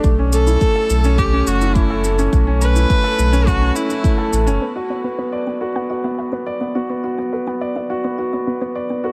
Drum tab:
SH |x-xxx-xxx-xxx-xx|x-xxx-xxx-xxx-xx|----------------|----------------|
BD |o---o---o---o---|o---o---o---o---|----------------|----------------|